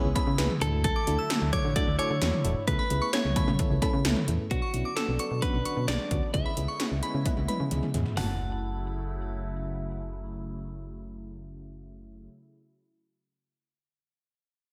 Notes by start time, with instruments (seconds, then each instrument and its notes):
Already playing: analog synth pad G#3 B3 C#4 E4
0.04 fm bass C#2
0.15 fm electric piano B3 C#4 E4 G#4 C#5, synth bell B5, kick, closed hi-hat, cowbell
0.27 fm bass C#3
0.38 fm bass C#2, fm electric piano B3 C#4 E4 G#4 B4, snare, closed hi-hat
0.50 mid tom
0.61 fm bass D2, analog synth pad D3 F#3 A3, fm electric piano A3 D4 E4 F#4 A4, clean electric guitar A4, closed hi-hat
0.84 clean electric guitar A4, kick, closed hi-hat
0.96 synth bell D6
1.07 fm bass D2, fm electric piano A3 D4 E4 F#4 A4, closed hi-hat
1.19 synth bell E6
1.30 fm electric piano A3 D4 E4 F#4 A4, snare, closed hi-hat
1.42 fm bass D2
1.53 fm electric piano A3 D4 E4 F#4 A4, clean electric guitar C#5, synth bell D6, kick, closed hi-hat, mid tom
1.65 fm bass D3
1.76 fm electric piano A3 D4 E4 F#4 A4, clean electric guitar D5, kick, closed hi-hat
1.87 fm bass D2
1.99 fm electric piano A3 D4 E4 F#4 A4, clean electric guitar C#5, synth bell D6, closed hi-hat, cowbell
2.10 fm bass D3
2.22 fm bass E2, fm electric piano A3 D4 E4 F#4 A4, snare, closed hi-hat
2.33 mid tom
2.45 fm bass E1, fm electric piano A3 D4 E4 F#4 A4, closed hi-hat
2.68 fm bass C#2, analog synth pad C#3 B3, fm electric piano A3 B3 C#4 E4 A4, clean electric guitar B4, kick, closed hi-hat
2.79 synth bell B5
2.90 fm bass C#2, fm electric piano A3 B3 C#4 E4 G#4, closed hi-hat
3.02 synth bell C#6
3.13 fm electric piano A3 B3 C#4 E4 A4, clean electric guitar C#5, snare, closed hi-hat
3.24 fm bass C#2, mid tom
3.36 fm electric piano A3 B3 C#4 E4 A4, synth bell B5, kick, closed hi-hat, mid tom, cowbell
3.48 fm bass C#3, mid tom
3.59 fm electric piano A3 B3 C#4 E4 A4, kick, closed hi-hat
3.71 fm bass C#2
3.82 fm electric piano A3 B3 C#4 E4 A4, synth bell B5, kick, closed hi-hat, cowbell
3.93 fm bass C#3
4.05 fm bass C#2, fm electric piano A3 B3 C#4 E4 A4, snare, closed hi-hat
4.17 mid tom
4.28 fm bass E2, fm electric piano A3 B3 C#4 E4 A4, closed hi-hat
4.51 fm bass B1, analog synth pad D3 F#3 B3 D4, fm electric piano B3 C#4 D4 F#4, clean electric guitar F#4, kick, closed hi-hat
4.62 synth bell C#6
4.74 fm bass B1, fm electric piano B3 C#4 D4 E4, closed hi-hat
4.85 synth bell D6
4.96 fm electric piano B3 C#4 D4 F#4, clean electric guitar A4, snare, closed hi-hat
5.08 fm bass B1
5.19 fm electric piano B3 C#4 D4 F#4, synth bell C#6, closed hi-hat
5.31 fm bass B2
5.42 fm electric piano B3 C#4 D4 F#4, clean electric guitar B4, kick, closed hi-hat
5.54 fm bass B1
5.65 fm electric piano B3 C#4 D4 F#4, synth bell C#6, closed hi-hat
5.77 fm bass B2
5.88 fm bass B1, fm electric piano B3 C#4 D4 G#4, clean electric guitar D5, snare, closed hi-hat
6.11 fm bass D2, fm electric piano B3 C#4 D4 F#4, kick, closed hi-hat
6.34 fm bass C#2, analog synth pad G#3 E4, fm electric piano B3 C#4 E4 G#4, clean electric guitar E5, kick, closed hi-hat
6.46 synth bell B5
6.57 fm bass C#2, fm electric piano B3 C#4 E4 G#4, closed hi-hat
6.68 synth bell C#6
6.80 fm electric piano B3 C#4 E4 G#4, snare, closed hi-hat
6.91 fm bass C#2
7.03 fm electric piano B3 C#4 E4 G#4, synth bell B5, closed hi-hat
7.14 fm bass C#3
7.26 fm electric piano B3 C#4 E4 B4, kick, closed hi-hat, high tom
7.37 fm bass C#2, high tom
7.48 fm electric piano B3 C#4 E4 B4, synth bell B5, closed hi-hat, mid tom
7.60 fm bass C#3
7.71 fm bass C#2, fm electric piano B3 C#4 E4 G#4, closed hi-hat, mid tom
7.83 mid tom
7.94 fm bass E2, fm electric piano B3 C#4 E4 G#4, closed hi-hat, floor tom
8.06 floor tom
8.15 fm bass F#1, analog synth pad C#3 F#3 A3 E4, fm electric piano A3 C#4 E4 F#4, clean electric guitar F#5, synth bell A5, snare, floor tom, open hi-hat